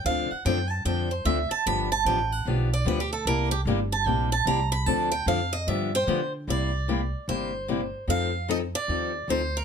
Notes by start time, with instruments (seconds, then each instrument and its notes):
0.04 upright bass D2, steel-string acoustic guitar D3 F3 C4 D4 A4 F5
0.31 steel-string acoustic guitar F#5, muted upright bass stroke
0.45 upright bass F#2, steel-string acoustic guitar D3 F3 C4 D4 A4 G5
0.70 steel-string acoustic guitar A5
0.85 upright bass F2, steel-string acoustic guitar D3 F3 C4 D4 A4 G5
1.11 steel-string acoustic guitar C5
1.25 upright bass D2, steel-string acoustic guitar D3 F3 C4 D4 A4 E5
1.51 steel-string acoustic guitar A5
1.66 upright bass G1, steel-string acoustic guitar D3 F3 B3 D4 G4 B5
1.92 steel-string acoustic guitar A5
2.05 upright bass A1, steel-string acoustic guitar D3 F3 B3 D4 G4 G5
2.32 steel-string acoustic guitar F#5
2.45 upright bass B1, steel-string acoustic guitar D3 F3 B3 D4 G4 F5
2.73 steel-string acoustic guitar D5
2.85 upright bass D2, steel-string acoustic guitar D3 F3 B3 D4 G4 B4
3.00 steel-string acoustic guitar G4
3.13 steel-string acoustic guitar A4
3.25 upright bass C2, steel-string acoustic guitar C3 G3 A#3 E4 G4 A#4
3.51 steel-string acoustic guitar G4
3.65 upright bass G1, steel-string acoustic guitar C3 G3 A#3 E4 G4
3.92 steel-string acoustic guitar A5
4.06 upright bass A#1, steel-string acoustic guitar C3 G3 A#3 E4 G4 G5
4.32 steel-string acoustic guitar A5
4.45 upright bass C2, steel-string acoustic guitar C3 G3 A#3 E4 G4 A#5
4.72 steel-string acoustic guitar B5
4.86 upright bass D2, steel-string acoustic guitar D3 F3 C4 D4 A4 A5
5.12 steel-string acoustic guitar G5
5.26 upright bass F2, steel-string acoustic guitar D3 F3 C4 D4 A4 F5
5.53 steel-string acoustic guitar D#5
5.67 upright bass G2, steel-string acoustic guitar D3 F3 B3 D4 G4 E5
5.95 steel-string acoustic guitar C5 G5
6.07 upright bass D3, steel-string acoustic guitar D3 F3 B3 D4 G4
6.47 upright bass C2, steel-string acoustic guitar C3 G3 A#3 E4 G4 D5
6.88 steel-string acoustic guitar C3 G3 A#3 E4 G4
7.28 upright bass G1, steel-string acoustic guitar C3 G3 A#3 E4 G4 C5
7.68 steel-string acoustic guitar C3 G3 A#3 E4 G4
8.07 upright bass F2, steel-string acoustic guitar F3 C4 D#4 A4 F5
8.48 steel-string acoustic guitar F3 C4 D#4 A4 D#5
8.75 steel-string acoustic guitar D5
8.88 upright bass D#2, steel-string acoustic guitar F3 C4 D#4 A4
9.28 upright bass D2, steel-string acoustic guitar F3 C4 D#4 A4 C5
9.57 steel-string acoustic guitar A#4